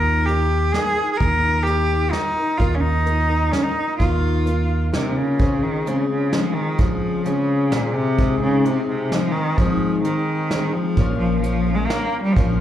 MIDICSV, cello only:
0, 0, Header, 1, 2, 480
1, 0, Start_track
1, 0, Tempo, 464756
1, 1249, Time_signature, 3, 2, 24, 8
1, 13018, End_track
2, 0, Start_track
2, 0, Title_t, "Cello"
2, 0, Program_c, 0, 42
2, 0, Note_on_c, 0, 70, 95
2, 265, Note_on_c, 0, 67, 84
2, 280, Note_off_c, 0, 70, 0
2, 743, Note_on_c, 0, 68, 95
2, 758, Note_off_c, 0, 67, 0
2, 1159, Note_off_c, 0, 68, 0
2, 1165, Note_on_c, 0, 68, 72
2, 1210, Note_on_c, 0, 70, 94
2, 1226, Note_off_c, 0, 68, 0
2, 1681, Note_on_c, 0, 67, 89
2, 1696, Note_off_c, 0, 70, 0
2, 2176, Note_on_c, 0, 63, 91
2, 2191, Note_off_c, 0, 67, 0
2, 2659, Note_on_c, 0, 65, 90
2, 2675, Note_off_c, 0, 63, 0
2, 2838, Note_on_c, 0, 61, 67
2, 2854, Note_off_c, 0, 65, 0
2, 2896, Note_on_c, 0, 63, 98
2, 2912, Note_off_c, 0, 61, 0
2, 3630, Note_on_c, 0, 61, 84
2, 3646, Note_off_c, 0, 63, 0
2, 3751, Note_on_c, 0, 63, 94
2, 3767, Note_off_c, 0, 61, 0
2, 4112, Note_off_c, 0, 63, 0
2, 4118, Note_on_c, 0, 65, 82
2, 5047, Note_off_c, 0, 65, 0
2, 5095, Note_on_c, 0, 48, 78
2, 5333, Note_on_c, 0, 49, 84
2, 5349, Note_off_c, 0, 48, 0
2, 5816, Note_on_c, 0, 51, 87
2, 5832, Note_off_c, 0, 49, 0
2, 6073, Note_on_c, 0, 49, 80
2, 6088, Note_off_c, 0, 51, 0
2, 6295, Note_off_c, 0, 49, 0
2, 6301, Note_on_c, 0, 49, 87
2, 6537, Note_on_c, 0, 53, 93
2, 6553, Note_off_c, 0, 49, 0
2, 6762, Note_on_c, 0, 51, 90
2, 6777, Note_off_c, 0, 53, 0
2, 7011, Note_on_c, 0, 53, 89
2, 7026, Note_off_c, 0, 51, 0
2, 7494, Note_on_c, 0, 49, 90
2, 7509, Note_off_c, 0, 53, 0
2, 7969, Note_on_c, 0, 46, 87
2, 7984, Note_off_c, 0, 49, 0
2, 8202, Note_on_c, 0, 48, 100
2, 8218, Note_off_c, 0, 46, 0
2, 8676, Note_off_c, 0, 48, 0
2, 8682, Note_on_c, 0, 49, 95
2, 8936, Note_on_c, 0, 48, 96
2, 8952, Note_off_c, 0, 49, 0
2, 9166, Note_off_c, 0, 48, 0
2, 9172, Note_on_c, 0, 48, 86
2, 9390, Note_on_c, 0, 53, 97
2, 9406, Note_off_c, 0, 48, 0
2, 9623, Note_on_c, 0, 51, 100
2, 9639, Note_off_c, 0, 53, 0
2, 9879, Note_on_c, 0, 53, 98
2, 9895, Note_off_c, 0, 51, 0
2, 10355, Note_off_c, 0, 53, 0
2, 10362, Note_on_c, 0, 51, 92
2, 11083, Note_on_c, 0, 53, 100
2, 11099, Note_off_c, 0, 51, 0
2, 11542, Note_off_c, 0, 53, 0
2, 11548, Note_on_c, 0, 53, 102
2, 11772, Note_off_c, 0, 53, 0
2, 11779, Note_on_c, 0, 53, 97
2, 12138, Note_on_c, 0, 56, 90
2, 12153, Note_off_c, 0, 53, 0
2, 12256, Note_on_c, 0, 58, 98
2, 12271, Note_off_c, 0, 56, 0
2, 12613, Note_off_c, 0, 58, 0
2, 12619, Note_on_c, 0, 55, 106
2, 12729, Note_on_c, 0, 53, 100
2, 12745, Note_off_c, 0, 55, 0
2, 13018, Note_off_c, 0, 53, 0
2, 13018, End_track
0, 0, End_of_file